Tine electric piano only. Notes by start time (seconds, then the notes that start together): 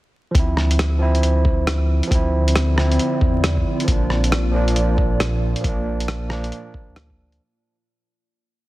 0.31 F3
0.35 C4 E4
0.98 F3 C4
1.03 E4
2.07 F3
2.11 C4
2.15 E4
2.76 F3 C4 E4
3.84 F3
3.88 A#3 D4
4.52 F3 A#3
4.56 D4
5.61 F3 A#3
5.69 D4
6.29 F3 A#3 D4